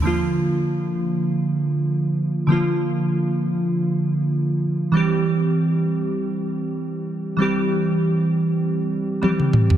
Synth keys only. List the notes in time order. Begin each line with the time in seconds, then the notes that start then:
0.02 D3 F3 A#3
0.07 F4
2.47 D3 F3 A#3
2.52 F4
4.92 E3 G3 C4
4.97 G4
7.37 E3 G3 C4
7.42 G4
9.22 E3 G3 C4 G4